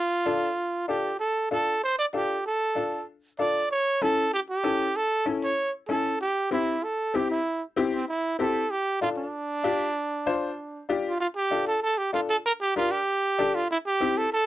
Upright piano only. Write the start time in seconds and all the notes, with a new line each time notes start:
0.25 D4 F4 A4
0.88 D4 F4 A4
1.51 D4 F4 A4
2.13 D4 F4 A4
2.75 D4 F4 A4
3.39 D4 F4 A4
4.02 C#4 E4 A4
4.64 C#4 E4 A4
5.26 C#4 E4 A4
5.89 C#4 E4 A4
6.51 C4 E4 G4
7.14 C4 E4 G4
7.76 C4 E4 G4
8.39 C4 E4 G4
9.01 D4 F4 A4
9.63 D4 F4 G4
10.26 D4 F4 C5
10.89 D4 F4 G4
11.51 D4 F4 A4
12.13 D4 F4 A4
12.76 D4 G4 A#4
13.38 D4 G4 A4
14.00 C4 E4 G4